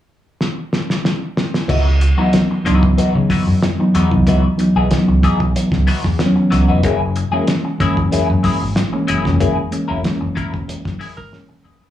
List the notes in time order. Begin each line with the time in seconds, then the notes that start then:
0.41 snare
0.73 snare
0.90 snare
1.05 snare
1.37 snare
1.54 snare
1.68 C#2 E3 B3 D#4 F#4, kick, crash
2.01 muted clean electric guitar stroke, closed hi-hat
2.17 E3 F#3 B3 D#4 F#4
2.33 snare, closed hi-hat
2.51 muted clean electric guitar stroke
2.64 C#2 E3 F#3 B3 D4 D#4 F#4, kick, snare, closed hi-hat
2.72 D#4
2.82 muted clean electric guitar stroke, kick
2.98 E3 B3 D#4 F#4, muted fingered electric bass stroke, closed hi-hat
3.15 C#3, muted clean electric guitar stroke
3.30 E3 B3 D#4 F#4, kick, snare, open hi-hat
3.47 F#2, muted clean electric guitar stroke
3.63 muted clean electric guitar stroke, snare, closed hi-hat
3.78 E3 F#3 B3 D#4, muted clean electric guitar stroke
3.95 E2 E3 B3 D#4 F#4, closed hi-hat
4.10 C2 E3 F#3 B3 D#4, muted clean electric guitar stroke, kick
4.27 C#2 E3 B3 D#4 F#4, kick, closed hi-hat
4.57 E3 F#3 B3 D#4, muted clean electric guitar stroke, closed hi-hat
4.75 B1 E3 B3 D#4 G#4
4.90 E3 F#3 B3 D#4, muted fingered electric bass stroke, muted clean electric guitar stroke, snare, closed hi-hat
5.08 C#2, muted clean electric guitar stroke
5.23 E3 B3 D#4 G#4, kick, closed hi-hat
5.40 B1, muted clean electric guitar stroke, kick
5.55 muted clean electric guitar stroke, closed hi-hat
5.72 C#2, kick, snare
5.87 E3 B3 D#4 F#4, open hi-hat
6.04 E2, muted clean electric guitar stroke, kick, snare
6.18 E3 F#3 B3 C4, muted clean electric guitar stroke, snare, closed hi-hat
6.26 C#4
6.36 muted clean electric guitar stroke
6.51 C#2 E3 B3 D#4 F#4, snare, closed hi-hat
6.68 F1 E3 B3 D#4 F#4
6.83 F#1 F#3 A#3 E4 G#4, kick, closed hi-hat
7.16 muted clean electric guitar stroke, closed hi-hat
7.32 E3 F#3 G#3 A#3 C#4 E4 G#4
7.47 snare, closed hi-hat
7.65 muted clean electric guitar stroke
7.79 F#1 E3 F#3 G#3 A#3 C#4 E4 G#4, kick, snare, closed hi-hat
7.97 muted clean electric guitar stroke, kick
8.12 F#3 A#3 E4 G#4, muted fingered electric bass stroke, closed hi-hat
8.29 F#2, muted clean electric guitar stroke
8.43 F#3 A#3 E4 G#4, kick, snare, open hi-hat
8.61 G#1, muted clean electric guitar stroke
8.76 muted clean electric guitar stroke, snare, closed hi-hat
8.92 E3 G#3 A#3 C#4, muted clean electric guitar stroke
9.08 F#1 F#3 A#3 E4 G#4, closed hi-hat
9.24 F1 E3 G#3 A#3 C#4, muted clean electric guitar stroke, kick, snare
9.40 F#1 F#3 A#3 E4 G#4, kick, closed hi-hat
9.71 E3 G#3 A#3 C#4, muted clean electric guitar stroke, closed hi-hat
9.88 E1 F#3 A#3 E4 A#4
10.03 E3 G#3 A#3 C#4, muted clean electric guitar stroke, muted fingered electric bass stroke, snare, closed hi-hat
10.21 F#1, muted clean electric guitar stroke
10.36 F#3 A#3 E4 A#4, kick, closed hi-hat
10.54 E1, muted clean electric guitar stroke, kick
10.68 muted clean electric guitar stroke, closed hi-hat
10.85 F#1, kick, snare
10.99 F#3 A#3 E4 G#4, open hi-hat
11.17 G#1 A#4, muted clean electric guitar stroke, kick, snare
11.31 E3 G#3 A#3 C#4, muted clean electric guitar stroke, snare
11.49 muted clean electric guitar stroke, high tom
11.64 F#1 F#3 A#3 E4 G#4, mid tom
11.80 F1 F#3 A#3 E4 G#4, floor tom